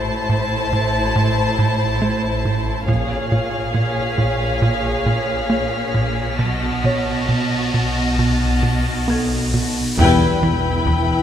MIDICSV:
0, 0, Header, 1, 14, 480
1, 0, Start_track
1, 0, Tempo, 864553
1, 1602, Time_signature, 4, 2, 24, 8
1, 2564, Tempo, 891530
1, 6121, End_track
2, 0, Start_track
2, 0, Title_t, "Violin section"
2, 0, Program_c, 0, 48
2, 1606, Note_on_c, 0, 89, 32
2, 2077, Note_on_c, 0, 95, 30
2, 4417, Note_off_c, 0, 95, 0
2, 4417, Note_on_c, 0, 94, 30
2, 5188, Note_off_c, 0, 94, 0
2, 5191, Note_off_c, 0, 89, 0
2, 5452, Note_on_c, 0, 79, 31
2, 5456, Note_on_c, 0, 83, 29
2, 6121, Note_off_c, 0, 79, 0
2, 6121, Note_off_c, 0, 83, 0
2, 6121, End_track
3, 0, Start_track
3, 0, Title_t, "Violin section"
3, 0, Program_c, 1, 48
3, 0, Note_on_c, 1, 81, 56
3, 1581, Note_off_c, 1, 81, 0
3, 1608, Note_on_c, 1, 77, 51
3, 3503, Note_off_c, 1, 77, 0
3, 3525, Note_on_c, 1, 81, 34
3, 5320, Note_off_c, 1, 81, 0
3, 5448, Note_on_c, 1, 79, 62
3, 6121, Note_off_c, 1, 79, 0
3, 6121, End_track
4, 0, Start_track
4, 0, Title_t, "Felt piano"
4, 0, Program_c, 2, 0
4, 0, Control_c, 2, 64, 127
4, 1611, Control_c, 2, 64, 0
4, 1693, Control_c, 2, 64, 127
4, 3533, Control_c, 2, 64, 0
4, 3613, Control_c, 2, 64, 127
4, 3768, Note_on_c, 2, 73, 32
4, 4974, Note_on_c, 2, 69, 19
4, 4977, Note_on_c, 2, 92, 28
4, 5191, Note_off_c, 2, 73, 0
4, 5431, Note_off_c, 2, 69, 0
4, 5433, Note_off_c, 2, 92, 0
4, 5460, Control_c, 2, 64, 0
4, 5543, Control_c, 2, 64, 127
4, 6121, End_track
5, 0, Start_track
5, 0, Title_t, "Violin section"
5, 0, Program_c, 3, 48
5, 0, Note_on_c, 3, 64, 46
5, 0, Note_on_c, 3, 72, 51
5, 1577, Note_off_c, 3, 64, 0
5, 1577, Note_off_c, 3, 72, 0
5, 1597, Note_on_c, 3, 73, 45
5, 1600, Note_on_c, 3, 68, 46
5, 3498, Note_off_c, 3, 73, 0
5, 3499, Note_off_c, 3, 68, 0
5, 3525, Note_on_c, 3, 66, 36
5, 3528, Note_on_c, 3, 75, 31
5, 5320, Note_off_c, 3, 66, 0
5, 5322, Note_off_c, 3, 75, 0
5, 5463, Note_on_c, 3, 71, 56
5, 6121, Note_off_c, 3, 71, 0
5, 6121, End_track
6, 0, Start_track
6, 0, Title_t, "Viola section"
6, 0, Program_c, 4, 48
6, 5454, Note_on_c, 4, 64, 53
6, 6121, Note_off_c, 4, 64, 0
6, 6121, End_track
7, 0, Start_track
7, 0, Title_t, "French horn section"
7, 0, Program_c, 5, 60
7, 5459, Note_on_c, 5, 59, 66
7, 5461, Note_on_c, 5, 55, 67
7, 5676, Note_off_c, 5, 59, 0
7, 5677, Note_off_c, 5, 55, 0
7, 6121, End_track
8, 0, Start_track
8, 0, Title_t, "Analog synth bass"
8, 0, Program_c, 6, 38
8, 0, Note_on_c, 6, 45, 51
8, 66, Note_off_c, 6, 45, 0
8, 163, Note_on_c, 6, 45, 47
8, 308, Note_off_c, 6, 45, 0
8, 404, Note_on_c, 6, 45, 47
8, 548, Note_off_c, 6, 45, 0
8, 642, Note_on_c, 6, 45, 71
8, 787, Note_off_c, 6, 45, 0
8, 882, Note_on_c, 6, 45, 50
8, 1026, Note_off_c, 6, 45, 0
8, 1120, Note_on_c, 6, 57, 52
8, 1265, Note_off_c, 6, 57, 0
8, 1361, Note_on_c, 6, 45, 44
8, 1505, Note_off_c, 6, 45, 0
8, 1600, Note_on_c, 6, 46, 64
8, 1743, Note_off_c, 6, 46, 0
8, 1842, Note_on_c, 6, 46, 47
8, 1985, Note_off_c, 6, 46, 0
8, 2078, Note_on_c, 6, 46, 47
8, 2223, Note_off_c, 6, 46, 0
8, 2320, Note_on_c, 6, 46, 43
8, 2466, Note_off_c, 6, 46, 0
8, 2565, Note_on_c, 6, 46, 68
8, 2707, Note_off_c, 6, 46, 0
8, 2803, Note_on_c, 6, 46, 49
8, 2946, Note_off_c, 6, 46, 0
8, 3037, Note_on_c, 6, 58, 49
8, 3182, Note_off_c, 6, 58, 0
8, 3278, Note_on_c, 6, 46, 47
8, 3423, Note_off_c, 6, 46, 0
8, 3518, Note_on_c, 6, 47, 63
8, 3664, Note_off_c, 6, 47, 0
8, 3762, Note_on_c, 6, 47, 46
8, 3907, Note_off_c, 6, 47, 0
8, 4001, Note_on_c, 6, 47, 43
8, 4147, Note_off_c, 6, 47, 0
8, 4245, Note_on_c, 6, 47, 43
8, 4390, Note_off_c, 6, 47, 0
8, 4486, Note_on_c, 6, 47, 59
8, 4631, Note_off_c, 6, 47, 0
8, 4723, Note_on_c, 6, 47, 44
8, 4869, Note_off_c, 6, 47, 0
8, 4965, Note_on_c, 6, 59, 46
8, 5111, Note_off_c, 6, 59, 0
8, 5212, Note_on_c, 6, 47, 48
8, 5356, Note_off_c, 6, 47, 0
8, 5454, Note_on_c, 6, 40, 86
8, 5595, Note_off_c, 6, 40, 0
8, 5692, Note_on_c, 6, 52, 54
8, 5833, Note_off_c, 6, 52, 0
8, 5927, Note_on_c, 6, 40, 51
8, 6068, Note_off_c, 6, 40, 0
8, 6121, End_track
9, 0, Start_track
9, 0, Title_t, "Cello section"
9, 0, Program_c, 7, 48
9, 0, Note_on_c, 7, 45, 49
9, 1576, Note_off_c, 7, 45, 0
9, 1597, Note_on_c, 7, 46, 46
9, 3498, Note_off_c, 7, 46, 0
9, 3519, Note_on_c, 7, 47, 37
9, 5317, Note_off_c, 7, 47, 0
9, 5451, Note_on_c, 7, 40, 61
9, 6121, Note_off_c, 7, 40, 0
9, 6121, End_track
10, 0, Start_track
10, 0, Title_t, "Synth drone"
10, 0, Program_c, 8, 95
10, 0, Note_on_c, 8, 33, 60
10, 1578, Note_off_c, 8, 33, 0
10, 1601, Note_on_c, 8, 34, 58
10, 3521, Note_off_c, 8, 34, 0
10, 3525, Note_on_c, 8, 35, 55
10, 5452, Note_off_c, 8, 35, 0
10, 5453, Note_on_c, 8, 40, 70
10, 6121, Note_off_c, 8, 40, 0
10, 6121, End_track
11, 0, Start_track
11, 0, Title_t, "Double bass section"
11, 0, Program_c, 10, 48
11, 0, Note_on_c, 10, 33, 50
11, 141, Note_off_c, 10, 33, 0
11, 1600, Note_on_c, 10, 34, 43
11, 2055, Note_off_c, 10, 34, 0
11, 3524, Note_on_c, 10, 35, 36
11, 3984, Note_off_c, 10, 35, 0
11, 5452, Note_on_c, 10, 28, 64
11, 6121, Note_off_c, 10, 28, 0
11, 6121, End_track
12, 0, Start_track
12, 0, Title_t, "Impact"
12, 0, Program_c, 11, 103
12, 5452, Note_on_c, 11, 60, 48
12, 6121, Note_off_c, 11, 60, 0
12, 6121, End_track
13, 0, Start_track
13, 0, Title_t, "Riser"
13, 0, Program_c, 12, 103
13, 1598, Note_on_c, 12, 60, 47
13, 5448, Note_off_c, 12, 60, 0
13, 6121, End_track
14, 0, Start_track
14, 0, Title_t, "Taiko and cinematic ensemble drums"
14, 1594, Note_on_c, 9, 41, 48
14, 1650, Note_off_c, 9, 41, 0
14, 2316, Note_on_c, 9, 41, 30
14, 2372, Note_off_c, 9, 41, 0
14, 5450, Note_on_c, 9, 41, 77
14, 5504, Note_off_c, 9, 41, 0
14, 5924, Note_on_c, 9, 41, 64
14, 5977, Note_off_c, 9, 41, 0
14, 6121, End_track
0, 0, End_of_file